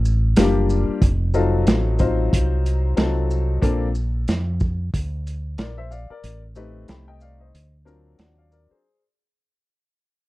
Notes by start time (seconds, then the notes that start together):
Already playing: A1
0.05 shaker
0.36 F#1 G3 A#3 D4 F4 G4, snare, closed hi-hat
0.70 shaker
0.89 muted fingered electric bass stroke
1.02 F1, kick, closed hi-hat
1.34 F#3 C4 D#4 F4 A4, shaker
1.67 A1, snare, closed hi-hat
1.99 F#3 C4 D#4 F4 C5, kick, closed hi-hat, shaker
2.33 C2, kick, closed hi-hat
2.66 closed hi-hat, shaker
2.96 C2 F#3 C4 D#4 F4 A4, snare, closed hi-hat
3.31 shaker
3.62 A#1 A#3 C4 D4 F4 A4, kick, closed hi-hat
3.95 shaker
4.28 F2, snare, closed hi-hat
4.60 kick, shaker
4.94 D2, kick, closed hi-hat
5.27 closed hi-hat, shaker
5.58 A#1 A#4 D5, snare, closed hi-hat
5.78 C5 E5
5.91 D5 F5, shaker
6.10 A#4 D5
6.24 A1, closed hi-hat
6.56 A3 C4 D#4 G4 B4, shaker
6.88 C2 G5 B5, snare, closed hi-hat
7.08 D#5 G5
7.21 D5 F5, shaker
7.40 C5 D#5
7.54 D2, closed hi-hat
7.85 F#3 C4 D4 F4 A#4, shaker
8.18 D#2 D5 F#5, snare, closed hi-hat
8.38 D5 F5
8.52 A#4 D5, shaker
8.71 G#4 C5, muted fingered electric bass stroke